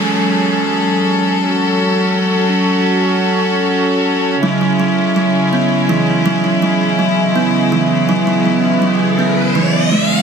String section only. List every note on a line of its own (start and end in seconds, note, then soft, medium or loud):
0.00 4.39 F#3 medium
0.00 7.32 C#4 medium
0.00 1.47 G#4 medium
0.00 4.39 A4 medium
1.50 4.40 F#4 medium
4.43 10.22 C#3 medium
4.43 10.22 G#3 medium
4.43 10.22 E4 medium
7.36 10.22 B3 medium